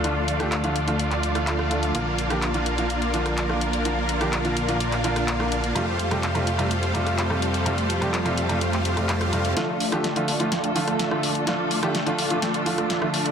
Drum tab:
HH |x-xxxxxxxxxxx-xx|x-xxxxxxxxxxx-xx|x-xxxxxxxxxxx-xx|x-xxxxxxxxxxx-xx|
CP |----x----x--x---|----x-------x---|----x----x--x---|----x-------x---|
SD |---r-------r-r--|---r-------r-r--|---r-------r-r--|---r-------r-r--|

HH |xxxxxxxxxxxxxxxx|x-oxxxoxxxoxx-ox|x-oxxxoxxxoxx-ox|
CP |----x----x--x---|----------------|----------------|
SD |---r-------r-r--|o--ro---o--ror--|o--ro---o--ror--|